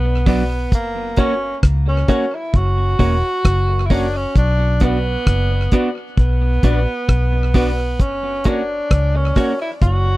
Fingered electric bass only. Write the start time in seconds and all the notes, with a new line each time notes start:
Already playing: B1
0.72 F#1
1.64 C#2
2.54 F#1
3.00 E1
3.45 F#1
4.36 B1
5.27 F#1
6.18 B1
6.64 A#1
7.09 B1
8.00 F#1
8.91 C#2
9.82 F#1